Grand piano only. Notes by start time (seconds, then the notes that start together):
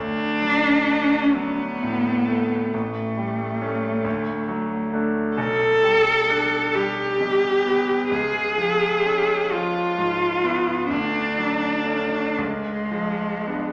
0.00 D2
0.42 F#3
0.87 D4
1.35 F#3
1.83 A2
2.28 A3
2.74 A1
3.17 G3
3.62 A3 C#4
4.05 D2
4.48 F#3
4.93 A3 D4
5.38 B1
5.83 G3
6.29 D4
6.75 G3
7.21 B2
7.66 B3
8.11 C#2
8.57 F3
9.06 C#4
9.52 F3
9.98 G#2
10.44 B3
10.90 D2
11.38 F#3
11.85 A3 C#4
12.38 C#2
12.91 F3
13.46 B3 D4